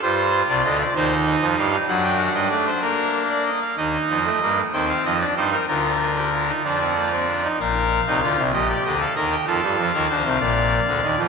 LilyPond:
<<
  \new Staff \with { instrumentName = "Pipe organ" } { \time 6/8 \key bes \major \tempo 4. = 64 << { c''8. d''16 ees''16 d''16 c''8 ees''8 f''8 | fis''16 g''16 fis''16 ees''16 d''16 c''16 bes'8. d''16 ees''16 f''16 | ees''4. g''16 f''16 ees''16 d''16 c''16 bes'16 | bes'4. d''4. |
f''4. ees''16 d''16 ees''16 f''16 ees''16 g''16 | f''2. | } \\ { f'4. ees'4. | d'2. | ees'8. a16 bes8 c'8. d'16 ees'8 | f'8. g'16 f'16 ees'16 d'16 c'16 bes16 c'16 d'16 ees'16 |
bes'8. ees'16 f'8 g'8. a'16 bes'8 | a'8. bes'16 c''8 d''4. | } >> }
  \new Staff \with { instrumentName = "Pipe organ" } { \clef bass \time 6/8 \key bes \major <g, g>8. <c, c>16 <d, d>8 <ees, ees>8. <f, f>16 <g, g>8 | <fis, fis>8. <g, g>16 a8 bes4. | <ees, ees>8 <f, f>8 <g, g>8 <ees, ees>8 <f, f>8 <g, g>8 | <d, d>4. <f, f>4. |
<bes,, bes,>8. <c, c>16 <d, d>16 <c, c>16 <bes,, bes,>8 <d, d>8 <ees, ees>8 | <f, f>16 <g, g>16 <f, f>16 <ees, ees>16 <d, d>16 <c, c>16 <bes,, bes,>8. <d, d>16 <ees, ees>16 <f, f>16 | }
>>